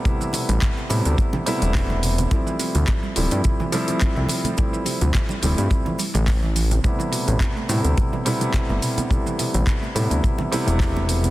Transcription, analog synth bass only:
X:1
M:4/4
L:1/16
Q:"Swing 16ths" 1/4=106
K:Ddor
V:1 name="Analog synth bass" clef=bass
z3 A,,, z2 A,, D,, z3 E,,,4- E,,, | z3 D,, z2 D,,, G,, z4 z C,, z2 | z3 D,, z2 D,,, G,, z3 A,,,4- A,,, | z3 A,,, z2 A,, D,, z4 z G,,, z2 |
z3 A,,, z2 A,, D,, z3 E,,,4- E,,, |]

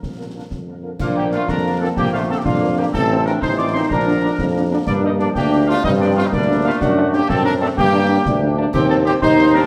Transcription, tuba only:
X:1
M:6/8
L:1/8
Q:3/8=124
K:Bb
V:1 name="Tuba" clef=bass
B,,,3 F,,3 | B,,,3 F,,3 | B,,,3 F,,3 | A,,,3 A,,,3 |
B,,,3 F,,3 | G,,3 D,,3 | G,,3 D,,3 | ^F,,3 F,,3 |
G,,3 D,,3 | E,,3 E,,3 |]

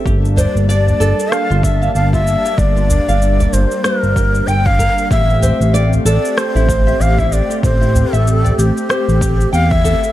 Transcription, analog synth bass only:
X:1
M:4/4
L:1/16
Q:"Swing 16ths" 1/4=95
K:Gdor
V:1 name="Analog synth bass" clef=bass
G,,,3 G,,,3 G,,, z2 G,,,3 G,,,3 z | G,,,3 G,,,3 G,,, z2 G,,,3 G,,,3 z | A,,,3 A,,,3 A,,, z2 A,,,3 A,,,3 z | A,,,3 A,,,3 A,,, z2 A,,,3 E,,3 z |]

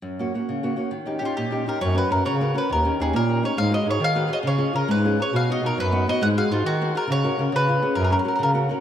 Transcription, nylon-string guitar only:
X:1
M:6/8
L:1/8
Q:3/8=136
K:F#
V:1 name="Nylon-string guitar"
F,, [A,CF] [A,CF] C, [A,CF] [A,CF] | D, [CD=G] [CDG] A,, [CDG] [CDG] | F, [CFA] [CFA] C, [CFA] [CFA] | D, [CD=G] [CDG] A, [CDG] [CDG] |
G, [FGB] [FGB] D, [FGB] [FGB] | C, [CEG] [CEG] G, [CEG] [CEG] | B,, [B,DF] [B,DF] F, [B,DF] [B,DF] | G, [FG^B] [FGB] D, [FGB] [FGB] |
C, [CFA] [CFA] C, [CEG] [CEG] | F, [CFA] [CFA] C, [CFA] [CFA] |]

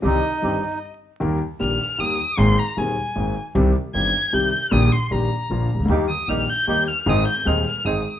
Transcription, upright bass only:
X:1
M:3/4
L:1/16
Q:1/4=154
K:Cm
V:1 name="Upright bass" clef=bass
C,,3/2 z2 z/2 G,,,3/2 z6 z/2 | [K:Eb] E,,3/2 z2 z/2 B,,,3/2 z2 z/2 E,,3/2 z2 z/2 | A,,,3/2 z2 z/2 E,,3/2 z2 z/2 A,,,3/2 z2 z/2 | C,,3/2 z2 z/2 G,,,3/2 z2 z/2 C,,3/2 z2 z/2 |
B,,,3/2 z2 z/2 B,,,3/2 z2 z/2 B,,,3/2 z C,,/2 _D,,/2 =D,,/2 | E,,3/2 z2 z/2 B,,,3/2 z2 z/2 E,,3/2 z2 z/2 | A,,,3/2 z2 z/2 E,,3/2 z2 z/2 A,,,3/2 z2 z/2 |]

